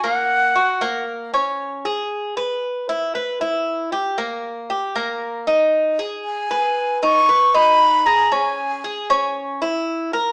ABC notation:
X:1
M:4/4
L:1/8
Q:1/4=116
K:G#m
V:1 name="Flute"
f4 z4 | z8 | z8 | g3 c'2 b2 a |
g4 z4 |]
V:2 name="Cuban tres"
A,2 F A,2 C2 G- | G B2 E B E2 =G | A,2 =G A,2 D2 ^G- | G B2 D B D2 G |
C2 G C2 E2 A |]